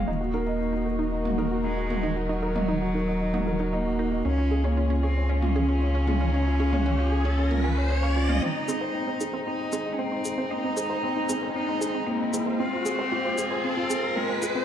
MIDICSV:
0, 0, Header, 1, 8, 480
1, 0, Start_track
1, 0, Tempo, 521739
1, 72, Time_signature, 4, 2, 24, 8
1, 13476, End_track
2, 0, Start_track
2, 0, Title_t, "Grand piano"
2, 0, Program_c, 0, 0
2, 0, Control_c, 0, 64, 127
2, 0, Note_on_c, 0, 60, 54
2, 0, Note_on_c, 0, 65, 65
2, 0, Note_on_c, 0, 77, 85
2, 74, Note_on_c, 0, 63, 70
2, 84, Control_c, 0, 64, 0
2, 93, Note_off_c, 0, 60, 0
2, 93, Note_off_c, 0, 65, 0
2, 93, Note_off_c, 0, 77, 0
2, 187, Note_off_c, 0, 63, 0
2, 192, Note_on_c, 0, 66, 63
2, 260, Note_off_c, 0, 66, 0
2, 262, Control_c, 0, 64, 127
2, 313, Note_on_c, 0, 70, 81
2, 380, Note_off_c, 0, 70, 0
2, 435, Note_on_c, 0, 75, 75
2, 547, Note_off_c, 0, 75, 0
2, 554, Note_on_c, 0, 63, 85
2, 666, Note_off_c, 0, 63, 0
2, 674, Note_on_c, 0, 66, 57
2, 787, Note_off_c, 0, 66, 0
2, 792, Note_on_c, 0, 70, 62
2, 905, Note_off_c, 0, 70, 0
2, 911, Note_on_c, 0, 75, 57
2, 980, Note_off_c, 0, 75, 0
2, 1034, Note_on_c, 0, 63, 70
2, 1147, Note_off_c, 0, 63, 0
2, 1152, Note_on_c, 0, 66, 62
2, 1220, Note_off_c, 0, 66, 0
2, 1274, Note_on_c, 0, 70, 86
2, 1341, Note_off_c, 0, 70, 0
2, 1395, Note_on_c, 0, 66, 63
2, 1461, Note_off_c, 0, 66, 0
2, 1510, Note_on_c, 0, 63, 78
2, 1625, Note_off_c, 0, 63, 0
2, 1628, Note_on_c, 0, 66, 59
2, 1744, Note_off_c, 0, 66, 0
2, 1750, Note_on_c, 0, 70, 61
2, 1865, Note_off_c, 0, 70, 0
2, 1873, Note_on_c, 0, 75, 64
2, 1941, Note_off_c, 0, 75, 0
2, 1989, Note_on_c, 0, 63, 68
2, 2104, Note_off_c, 0, 63, 0
2, 2109, Note_on_c, 0, 66, 62
2, 2179, Note_off_c, 0, 66, 0
2, 2230, Note_on_c, 0, 70, 85
2, 2299, Note_off_c, 0, 70, 0
2, 2350, Note_on_c, 0, 75, 84
2, 2464, Note_off_c, 0, 75, 0
2, 2469, Note_on_c, 0, 63, 86
2, 2584, Note_off_c, 0, 63, 0
2, 2590, Note_on_c, 0, 66, 64
2, 2705, Note_off_c, 0, 66, 0
2, 2711, Note_on_c, 0, 70, 63
2, 2825, Note_off_c, 0, 70, 0
2, 2831, Note_on_c, 0, 75, 61
2, 2900, Note_off_c, 0, 75, 0
2, 2950, Note_on_c, 0, 63, 70
2, 3065, Note_off_c, 0, 63, 0
2, 3073, Note_on_c, 0, 66, 63
2, 3141, Note_off_c, 0, 66, 0
2, 3191, Note_on_c, 0, 70, 87
2, 3260, Note_off_c, 0, 70, 0
2, 3312, Note_on_c, 0, 66, 66
2, 3380, Note_off_c, 0, 66, 0
2, 3433, Note_on_c, 0, 63, 84
2, 3546, Note_off_c, 0, 63, 0
2, 3552, Note_on_c, 0, 66, 64
2, 3666, Note_off_c, 0, 66, 0
2, 3672, Note_on_c, 0, 70, 59
2, 3786, Note_off_c, 0, 70, 0
2, 3791, Note_on_c, 0, 75, 64
2, 3860, Note_off_c, 0, 75, 0
2, 3912, Note_on_c, 0, 61, 74
2, 3922, Control_c, 0, 64, 0
2, 4026, Note_off_c, 0, 61, 0
2, 4032, Note_on_c, 0, 65, 66
2, 4074, Control_c, 0, 64, 127
2, 4100, Note_off_c, 0, 65, 0
2, 4151, Note_on_c, 0, 68, 91
2, 4220, Note_off_c, 0, 68, 0
2, 4269, Note_on_c, 0, 73, 85
2, 4384, Note_off_c, 0, 73, 0
2, 4392, Note_on_c, 0, 61, 88
2, 4506, Note_off_c, 0, 61, 0
2, 4511, Note_on_c, 0, 65, 67
2, 4625, Note_off_c, 0, 65, 0
2, 4633, Note_on_c, 0, 68, 66
2, 4746, Note_off_c, 0, 68, 0
2, 4753, Note_on_c, 0, 73, 60
2, 4821, Note_off_c, 0, 73, 0
2, 4871, Note_on_c, 0, 61, 73
2, 4985, Note_off_c, 0, 61, 0
2, 4994, Note_on_c, 0, 65, 64
2, 5061, Note_off_c, 0, 65, 0
2, 5114, Note_on_c, 0, 68, 88
2, 5181, Note_off_c, 0, 68, 0
2, 5233, Note_on_c, 0, 65, 65
2, 5301, Note_off_c, 0, 65, 0
2, 5353, Note_on_c, 0, 61, 85
2, 5466, Note_off_c, 0, 61, 0
2, 5475, Note_on_c, 0, 65, 62
2, 5587, Note_off_c, 0, 65, 0
2, 5595, Note_on_c, 0, 68, 61
2, 5707, Note_off_c, 0, 68, 0
2, 5712, Note_on_c, 0, 73, 64
2, 5780, Note_off_c, 0, 73, 0
2, 5832, Note_on_c, 0, 61, 67
2, 5946, Note_off_c, 0, 61, 0
2, 5953, Note_on_c, 0, 65, 65
2, 6021, Note_off_c, 0, 65, 0
2, 6071, Note_on_c, 0, 68, 81
2, 6139, Note_off_c, 0, 68, 0
2, 6189, Note_on_c, 0, 73, 83
2, 6304, Note_off_c, 0, 73, 0
2, 6310, Note_on_c, 0, 61, 89
2, 6425, Note_off_c, 0, 61, 0
2, 6431, Note_on_c, 0, 65, 70
2, 6545, Note_off_c, 0, 65, 0
2, 6549, Note_on_c, 0, 68, 69
2, 6664, Note_off_c, 0, 68, 0
2, 6668, Note_on_c, 0, 73, 60
2, 6738, Note_off_c, 0, 73, 0
2, 6790, Note_on_c, 0, 61, 69
2, 6905, Note_off_c, 0, 61, 0
2, 6912, Note_on_c, 0, 65, 65
2, 6980, Note_off_c, 0, 65, 0
2, 7028, Note_on_c, 0, 80, 89
2, 7144, Note_off_c, 0, 80, 0
2, 7149, Note_on_c, 0, 73, 70
2, 7254, Note_off_c, 0, 73, 0
2, 7268, Note_on_c, 0, 73, 68
2, 7338, Note_off_c, 0, 73, 0
2, 7387, Note_on_c, 0, 85, 63
2, 7503, Note_off_c, 0, 85, 0
2, 7506, Note_on_c, 0, 65, 76
2, 7577, Note_off_c, 0, 65, 0
2, 7624, Note_on_c, 0, 77, 61
2, 7742, Note_off_c, 0, 77, 0
2, 7746, Note_on_c, 0, 60, 73
2, 7762, Control_c, 0, 64, 0
2, 7863, Note_off_c, 0, 60, 0
2, 7868, Note_on_c, 0, 63, 65
2, 7902, Control_c, 0, 64, 127
2, 7938, Note_off_c, 0, 63, 0
2, 7985, Note_on_c, 0, 68, 86
2, 8057, Note_off_c, 0, 68, 0
2, 8106, Note_on_c, 0, 72, 82
2, 8222, Note_off_c, 0, 72, 0
2, 8227, Note_on_c, 0, 60, 88
2, 8343, Note_off_c, 0, 60, 0
2, 8344, Note_on_c, 0, 63, 67
2, 8462, Note_off_c, 0, 63, 0
2, 8468, Note_on_c, 0, 68, 72
2, 8584, Note_off_c, 0, 68, 0
2, 8586, Note_on_c, 0, 72, 62
2, 8657, Note_off_c, 0, 72, 0
2, 8710, Note_on_c, 0, 60, 73
2, 8825, Note_off_c, 0, 60, 0
2, 8829, Note_on_c, 0, 63, 66
2, 8899, Note_off_c, 0, 63, 0
2, 8949, Note_on_c, 0, 68, 92
2, 9018, Note_off_c, 0, 68, 0
2, 9069, Note_on_c, 0, 63, 68
2, 9138, Note_off_c, 0, 63, 0
2, 9188, Note_on_c, 0, 60, 88
2, 9304, Note_off_c, 0, 60, 0
2, 9308, Note_on_c, 0, 63, 65
2, 9423, Note_off_c, 0, 63, 0
2, 9430, Note_on_c, 0, 68, 66
2, 9545, Note_off_c, 0, 68, 0
2, 9549, Note_on_c, 0, 72, 65
2, 9619, Note_off_c, 0, 72, 0
2, 9670, Note_on_c, 0, 60, 70
2, 9784, Note_off_c, 0, 60, 0
2, 9789, Note_on_c, 0, 63, 67
2, 9859, Note_off_c, 0, 63, 0
2, 9905, Note_on_c, 0, 68, 91
2, 9976, Note_off_c, 0, 68, 0
2, 10025, Note_on_c, 0, 72, 86
2, 10142, Note_off_c, 0, 72, 0
2, 10146, Note_on_c, 0, 60, 89
2, 10263, Note_off_c, 0, 60, 0
2, 10264, Note_on_c, 0, 63, 68
2, 10382, Note_off_c, 0, 63, 0
2, 10387, Note_on_c, 0, 68, 74
2, 10503, Note_off_c, 0, 68, 0
2, 10506, Note_on_c, 0, 72, 64
2, 10577, Note_off_c, 0, 72, 0
2, 10627, Note_on_c, 0, 60, 75
2, 10743, Note_off_c, 0, 60, 0
2, 10746, Note_on_c, 0, 63, 67
2, 10817, Note_off_c, 0, 63, 0
2, 10864, Note_on_c, 0, 68, 96
2, 10936, Note_off_c, 0, 68, 0
2, 10984, Note_on_c, 0, 63, 69
2, 11056, Note_off_c, 0, 63, 0
2, 11102, Note_on_c, 0, 60, 94
2, 11221, Note_off_c, 0, 60, 0
2, 11225, Note_on_c, 0, 63, 71
2, 11342, Note_off_c, 0, 63, 0
2, 11346, Note_on_c, 0, 68, 64
2, 11463, Note_off_c, 0, 68, 0
2, 11465, Note_on_c, 0, 72, 68
2, 11537, Note_off_c, 0, 72, 0
2, 11587, Note_on_c, 0, 60, 75
2, 11605, Control_c, 0, 64, 0
2, 11703, Note_off_c, 0, 60, 0
2, 11710, Note_on_c, 0, 65, 71
2, 11771, Control_c, 0, 64, 127
2, 11779, Note_off_c, 0, 65, 0
2, 11826, Note_on_c, 0, 68, 94
2, 11897, Note_off_c, 0, 68, 0
2, 11948, Note_on_c, 0, 72, 95
2, 12064, Note_off_c, 0, 72, 0
2, 12066, Note_on_c, 0, 60, 95
2, 12183, Note_off_c, 0, 60, 0
2, 12188, Note_on_c, 0, 65, 71
2, 12304, Note_off_c, 0, 65, 0
2, 12308, Note_on_c, 0, 68, 70
2, 12424, Note_off_c, 0, 68, 0
2, 12428, Note_on_c, 0, 72, 70
2, 12498, Note_off_c, 0, 72, 0
2, 12550, Note_on_c, 0, 60, 73
2, 12665, Note_off_c, 0, 60, 0
2, 12670, Note_on_c, 0, 65, 76
2, 12739, Note_off_c, 0, 65, 0
2, 12789, Note_on_c, 0, 68, 100
2, 12859, Note_off_c, 0, 68, 0
2, 12911, Note_on_c, 0, 65, 72
2, 12979, Note_off_c, 0, 65, 0
2, 13030, Note_on_c, 0, 60, 84
2, 13145, Note_off_c, 0, 60, 0
2, 13153, Note_on_c, 0, 65, 67
2, 13266, Note_off_c, 0, 65, 0
2, 13272, Note_on_c, 0, 68, 68
2, 13386, Note_off_c, 0, 68, 0
2, 13393, Note_on_c, 0, 72, 69
2, 13460, Note_off_c, 0, 72, 0
2, 13476, End_track
3, 0, Start_track
3, 0, Title_t, "String section"
3, 0, Program_c, 1, 48
3, 71, Note_on_c, 1, 51, 64
3, 73, Note_on_c, 1, 66, 59
3, 73, Note_on_c, 1, 70, 66
3, 75, Note_on_c, 1, 63, 59
3, 3874, Note_off_c, 1, 51, 0
3, 3875, Note_off_c, 1, 66, 0
3, 3875, Note_off_c, 1, 70, 0
3, 3876, Note_off_c, 1, 63, 0
3, 3911, Note_on_c, 1, 49, 66
3, 3911, Note_on_c, 1, 65, 63
3, 3913, Note_on_c, 1, 61, 62
3, 3914, Note_on_c, 1, 68, 75
3, 7714, Note_off_c, 1, 49, 0
3, 7714, Note_off_c, 1, 65, 0
3, 7715, Note_off_c, 1, 61, 0
3, 7716, Note_off_c, 1, 68, 0
3, 7743, Note_on_c, 1, 56, 72
3, 7743, Note_on_c, 1, 60, 65
3, 7743, Note_on_c, 1, 63, 78
3, 11550, Note_off_c, 1, 63, 0
3, 11589, Note_on_c, 1, 65, 85
3, 13476, Note_off_c, 1, 56, 0
3, 13476, Note_off_c, 1, 60, 0
3, 13476, Note_off_c, 1, 65, 0
3, 13476, End_track
4, 0, Start_track
4, 0, Title_t, "Synth arpeggio sound"
4, 0, Program_c, 2, 84
4, 70, Note_on_c, 2, 63, 93
4, 143, Note_off_c, 2, 63, 0
4, 190, Note_on_c, 2, 66, 62
4, 264, Note_off_c, 2, 66, 0
4, 311, Note_on_c, 2, 63, 94
4, 421, Note_off_c, 2, 63, 0
4, 430, Note_on_c, 2, 75, 69
4, 504, Note_off_c, 2, 75, 0
4, 670, Note_on_c, 2, 63, 86
4, 744, Note_off_c, 2, 63, 0
4, 790, Note_on_c, 2, 66, 70
4, 864, Note_off_c, 2, 66, 0
4, 910, Note_on_c, 2, 63, 94
4, 1020, Note_off_c, 2, 63, 0
4, 1028, Note_on_c, 2, 75, 70
4, 1103, Note_off_c, 2, 75, 0
4, 1270, Note_on_c, 2, 63, 89
4, 1344, Note_off_c, 2, 63, 0
4, 1389, Note_on_c, 2, 66, 67
4, 1463, Note_off_c, 2, 66, 0
4, 1510, Note_on_c, 2, 63, 83
4, 1620, Note_off_c, 2, 63, 0
4, 1630, Note_on_c, 2, 75, 67
4, 1703, Note_off_c, 2, 75, 0
4, 1870, Note_on_c, 2, 63, 95
4, 1943, Note_off_c, 2, 63, 0
4, 1989, Note_on_c, 2, 66, 72
4, 2063, Note_off_c, 2, 66, 0
4, 2110, Note_on_c, 2, 63, 87
4, 2220, Note_off_c, 2, 63, 0
4, 2230, Note_on_c, 2, 75, 72
4, 2304, Note_off_c, 2, 75, 0
4, 2470, Note_on_c, 2, 63, 89
4, 2543, Note_off_c, 2, 63, 0
4, 2590, Note_on_c, 2, 66, 62
4, 2663, Note_off_c, 2, 66, 0
4, 2709, Note_on_c, 2, 63, 85
4, 2820, Note_off_c, 2, 63, 0
4, 2831, Note_on_c, 2, 75, 69
4, 2904, Note_off_c, 2, 75, 0
4, 3071, Note_on_c, 2, 63, 92
4, 3144, Note_off_c, 2, 63, 0
4, 3189, Note_on_c, 2, 66, 70
4, 3263, Note_off_c, 2, 66, 0
4, 3311, Note_on_c, 2, 63, 89
4, 3420, Note_off_c, 2, 63, 0
4, 3431, Note_on_c, 2, 75, 70
4, 3504, Note_off_c, 2, 75, 0
4, 3671, Note_on_c, 2, 63, 89
4, 3744, Note_off_c, 2, 63, 0
4, 3789, Note_on_c, 2, 66, 68
4, 3863, Note_off_c, 2, 66, 0
4, 3910, Note_on_c, 2, 61, 88
4, 4020, Note_off_c, 2, 61, 0
4, 4030, Note_on_c, 2, 73, 63
4, 4104, Note_off_c, 2, 73, 0
4, 4270, Note_on_c, 2, 61, 88
4, 4343, Note_off_c, 2, 61, 0
4, 4390, Note_on_c, 2, 65, 73
4, 4463, Note_off_c, 2, 65, 0
4, 4509, Note_on_c, 2, 61, 88
4, 4620, Note_off_c, 2, 61, 0
4, 4630, Note_on_c, 2, 73, 73
4, 4704, Note_off_c, 2, 73, 0
4, 4869, Note_on_c, 2, 61, 88
4, 4943, Note_off_c, 2, 61, 0
4, 4992, Note_on_c, 2, 65, 69
4, 5065, Note_off_c, 2, 65, 0
4, 5112, Note_on_c, 2, 61, 91
4, 5221, Note_off_c, 2, 61, 0
4, 5231, Note_on_c, 2, 73, 68
4, 5304, Note_off_c, 2, 73, 0
4, 5472, Note_on_c, 2, 61, 98
4, 5545, Note_off_c, 2, 61, 0
4, 5593, Note_on_c, 2, 65, 68
4, 5665, Note_off_c, 2, 65, 0
4, 5712, Note_on_c, 2, 61, 94
4, 5821, Note_off_c, 2, 61, 0
4, 5832, Note_on_c, 2, 73, 78
4, 5905, Note_off_c, 2, 73, 0
4, 6071, Note_on_c, 2, 61, 98
4, 6144, Note_off_c, 2, 61, 0
4, 6191, Note_on_c, 2, 65, 69
4, 6264, Note_off_c, 2, 65, 0
4, 6311, Note_on_c, 2, 61, 96
4, 6420, Note_off_c, 2, 61, 0
4, 6430, Note_on_c, 2, 73, 70
4, 6504, Note_off_c, 2, 73, 0
4, 6669, Note_on_c, 2, 61, 97
4, 6743, Note_off_c, 2, 61, 0
4, 6790, Note_on_c, 2, 65, 73
4, 6863, Note_off_c, 2, 65, 0
4, 6908, Note_on_c, 2, 61, 92
4, 7019, Note_off_c, 2, 61, 0
4, 7031, Note_on_c, 2, 65, 66
4, 7104, Note_off_c, 2, 65, 0
4, 7271, Note_on_c, 2, 68, 75
4, 7344, Note_off_c, 2, 68, 0
4, 7389, Note_on_c, 2, 77, 66
4, 7434, Note_off_c, 2, 77, 0
4, 7508, Note_on_c, 2, 61, 72
4, 7583, Note_off_c, 2, 61, 0
4, 7629, Note_on_c, 2, 77, 71
4, 7674, Note_off_c, 2, 77, 0
4, 7749, Note_on_c, 2, 60, 90
4, 7823, Note_off_c, 2, 60, 0
4, 7870, Note_on_c, 2, 63, 67
4, 7943, Note_off_c, 2, 63, 0
4, 7991, Note_on_c, 2, 60, 102
4, 8101, Note_off_c, 2, 60, 0
4, 8109, Note_on_c, 2, 72, 73
4, 8183, Note_off_c, 2, 72, 0
4, 8349, Note_on_c, 2, 60, 95
4, 8423, Note_off_c, 2, 60, 0
4, 8470, Note_on_c, 2, 63, 72
4, 8543, Note_off_c, 2, 63, 0
4, 8589, Note_on_c, 2, 60, 98
4, 8700, Note_off_c, 2, 60, 0
4, 8710, Note_on_c, 2, 72, 74
4, 8784, Note_off_c, 2, 72, 0
4, 8948, Note_on_c, 2, 60, 96
4, 9023, Note_off_c, 2, 60, 0
4, 9068, Note_on_c, 2, 63, 70
4, 9143, Note_off_c, 2, 63, 0
4, 9189, Note_on_c, 2, 60, 87
4, 9299, Note_off_c, 2, 60, 0
4, 9310, Note_on_c, 2, 72, 73
4, 9384, Note_off_c, 2, 72, 0
4, 9549, Note_on_c, 2, 60, 90
4, 9623, Note_off_c, 2, 60, 0
4, 9669, Note_on_c, 2, 63, 78
4, 9743, Note_off_c, 2, 63, 0
4, 9788, Note_on_c, 2, 60, 84
4, 9899, Note_off_c, 2, 60, 0
4, 9907, Note_on_c, 2, 72, 77
4, 9982, Note_off_c, 2, 72, 0
4, 10150, Note_on_c, 2, 60, 94
4, 10223, Note_off_c, 2, 60, 0
4, 10271, Note_on_c, 2, 63, 70
4, 10344, Note_off_c, 2, 63, 0
4, 10391, Note_on_c, 2, 60, 101
4, 10501, Note_off_c, 2, 60, 0
4, 10512, Note_on_c, 2, 72, 76
4, 10584, Note_off_c, 2, 72, 0
4, 10751, Note_on_c, 2, 60, 94
4, 10824, Note_off_c, 2, 60, 0
4, 10872, Note_on_c, 2, 63, 77
4, 10944, Note_off_c, 2, 63, 0
4, 10991, Note_on_c, 2, 60, 97
4, 11100, Note_off_c, 2, 60, 0
4, 11109, Note_on_c, 2, 72, 75
4, 11183, Note_off_c, 2, 72, 0
4, 11351, Note_on_c, 2, 60, 96
4, 11424, Note_off_c, 2, 60, 0
4, 11472, Note_on_c, 2, 63, 73
4, 11544, Note_off_c, 2, 63, 0
4, 11592, Note_on_c, 2, 60, 98
4, 11701, Note_off_c, 2, 60, 0
4, 11709, Note_on_c, 2, 72, 68
4, 11783, Note_off_c, 2, 72, 0
4, 11949, Note_on_c, 2, 60, 99
4, 12023, Note_off_c, 2, 60, 0
4, 12072, Note_on_c, 2, 65, 73
4, 12145, Note_off_c, 2, 65, 0
4, 12190, Note_on_c, 2, 60, 94
4, 12300, Note_off_c, 2, 60, 0
4, 12312, Note_on_c, 2, 72, 74
4, 12384, Note_off_c, 2, 72, 0
4, 12549, Note_on_c, 2, 60, 98
4, 12623, Note_off_c, 2, 60, 0
4, 12671, Note_on_c, 2, 65, 73
4, 12744, Note_off_c, 2, 65, 0
4, 12791, Note_on_c, 2, 60, 91
4, 12901, Note_off_c, 2, 60, 0
4, 12910, Note_on_c, 2, 72, 73
4, 12984, Note_off_c, 2, 72, 0
4, 13149, Note_on_c, 2, 60, 93
4, 13223, Note_off_c, 2, 60, 0
4, 13269, Note_on_c, 2, 65, 74
4, 13343, Note_off_c, 2, 65, 0
4, 13389, Note_on_c, 2, 60, 93
4, 13476, Note_off_c, 2, 60, 0
4, 13476, End_track
5, 0, Start_track
5, 0, Title_t, "Cello"
5, 0, Program_c, 3, 42
5, 71, Note_on_c, 3, 58, 80
5, 994, Note_off_c, 3, 58, 0
5, 1033, Note_on_c, 3, 58, 87
5, 1516, Note_on_c, 3, 56, 81
5, 1530, Note_off_c, 3, 58, 0
5, 1996, Note_on_c, 3, 54, 89
5, 2010, Note_off_c, 3, 56, 0
5, 3435, Note_on_c, 3, 58, 88
5, 3448, Note_off_c, 3, 54, 0
5, 3914, Note_on_c, 3, 61, 98
5, 3928, Note_off_c, 3, 58, 0
5, 4274, Note_on_c, 3, 58, 83
5, 4288, Note_off_c, 3, 61, 0
5, 4627, Note_off_c, 3, 58, 0
5, 4632, Note_on_c, 3, 60, 83
5, 4875, Note_on_c, 3, 61, 102
5, 4889, Note_off_c, 3, 60, 0
5, 7263, Note_off_c, 3, 61, 0
5, 7268, Note_on_c, 3, 61, 83
5, 7749, Note_on_c, 3, 63, 92
5, 7763, Note_off_c, 3, 61, 0
5, 8703, Note_off_c, 3, 63, 0
5, 8708, Note_on_c, 3, 63, 88
5, 9129, Note_on_c, 3, 61, 63
5, 9143, Note_off_c, 3, 63, 0
5, 9189, Note_on_c, 3, 60, 81
5, 9203, Note_off_c, 3, 61, 0
5, 9669, Note_on_c, 3, 63, 92
5, 9683, Note_off_c, 3, 60, 0
5, 10625, Note_off_c, 3, 63, 0
5, 10631, Note_on_c, 3, 63, 98
5, 11107, Note_on_c, 3, 58, 83
5, 11121, Note_off_c, 3, 63, 0
5, 11589, Note_on_c, 3, 60, 93
5, 11602, Note_off_c, 3, 58, 0
5, 12546, Note_off_c, 3, 60, 0
5, 12551, Note_on_c, 3, 60, 101
5, 13030, Note_on_c, 3, 56, 87
5, 13044, Note_off_c, 3, 60, 0
5, 13476, Note_off_c, 3, 56, 0
5, 13476, End_track
6, 0, Start_track
6, 0, Title_t, "Sub bass"
6, 0, Program_c, 4, 38
6, 71, Note_on_c, 4, 27, 74
6, 3887, Note_off_c, 4, 27, 0
6, 3911, Note_on_c, 4, 37, 79
6, 7727, Note_off_c, 4, 37, 0
6, 7988, Note_on_c, 4, 32, 94
6, 8180, Note_off_c, 4, 32, 0
6, 8469, Note_on_c, 4, 32, 84
6, 8661, Note_off_c, 4, 32, 0
6, 8951, Note_on_c, 4, 32, 90
6, 9142, Note_off_c, 4, 32, 0
6, 9430, Note_on_c, 4, 32, 95
6, 9621, Note_off_c, 4, 32, 0
6, 9908, Note_on_c, 4, 32, 94
6, 10100, Note_off_c, 4, 32, 0
6, 10390, Note_on_c, 4, 32, 94
6, 10581, Note_off_c, 4, 32, 0
6, 10869, Note_on_c, 4, 32, 92
6, 11061, Note_off_c, 4, 32, 0
6, 11353, Note_on_c, 4, 32, 93
6, 11543, Note_off_c, 4, 32, 0
6, 11831, Note_on_c, 4, 29, 91
6, 12022, Note_off_c, 4, 29, 0
6, 12310, Note_on_c, 4, 29, 89
6, 12501, Note_off_c, 4, 29, 0
6, 12791, Note_on_c, 4, 29, 95
6, 12982, Note_off_c, 4, 29, 0
6, 13270, Note_on_c, 4, 29, 98
6, 13461, Note_off_c, 4, 29, 0
6, 13476, End_track
7, 0, Start_track
7, 0, Title_t, "Riser"
7, 0, Program_c, 5, 103
7, 3910, Note_on_c, 5, 60, 63
7, 7748, Note_off_c, 5, 60, 0
7, 7748, Note_on_c, 5, 60, 70
7, 13476, Note_off_c, 5, 60, 0
7, 13476, End_track
8, 0, Start_track
8, 0, Title_t, "Drums"
8, 1152, Note_on_c, 9, 45, 45
8, 1244, Note_off_c, 9, 45, 0
8, 1751, Note_on_c, 9, 45, 51
8, 1843, Note_off_c, 9, 45, 0
8, 2352, Note_on_c, 9, 45, 54
8, 2444, Note_off_c, 9, 45, 0
8, 3071, Note_on_c, 9, 45, 46
8, 3163, Note_off_c, 9, 45, 0
8, 4989, Note_on_c, 9, 45, 49
8, 5081, Note_off_c, 9, 45, 0
8, 5588, Note_on_c, 9, 45, 57
8, 5680, Note_off_c, 9, 45, 0
8, 6190, Note_on_c, 9, 45, 54
8, 6282, Note_off_c, 9, 45, 0
8, 6909, Note_on_c, 9, 45, 47
8, 7001, Note_off_c, 9, 45, 0
8, 7629, Note_on_c, 9, 45, 56
8, 7721, Note_off_c, 9, 45, 0
8, 7989, Note_on_c, 9, 82, 52
8, 8081, Note_off_c, 9, 82, 0
8, 8469, Note_on_c, 9, 82, 51
8, 8561, Note_off_c, 9, 82, 0
8, 8946, Note_on_c, 9, 82, 51
8, 9038, Note_off_c, 9, 82, 0
8, 9428, Note_on_c, 9, 82, 57
8, 9520, Note_off_c, 9, 82, 0
8, 9909, Note_on_c, 9, 82, 58
8, 10001, Note_off_c, 9, 82, 0
8, 10389, Note_on_c, 9, 82, 60
8, 10481, Note_off_c, 9, 82, 0
8, 10871, Note_on_c, 9, 82, 54
8, 10963, Note_off_c, 9, 82, 0
8, 11349, Note_on_c, 9, 82, 62
8, 11441, Note_off_c, 9, 82, 0
8, 11829, Note_on_c, 9, 82, 57
8, 11921, Note_off_c, 9, 82, 0
8, 12309, Note_on_c, 9, 82, 60
8, 12401, Note_off_c, 9, 82, 0
8, 12789, Note_on_c, 9, 82, 58
8, 12881, Note_off_c, 9, 82, 0
8, 13269, Note_on_c, 9, 82, 63
8, 13361, Note_off_c, 9, 82, 0
8, 13476, End_track
0, 0, End_of_file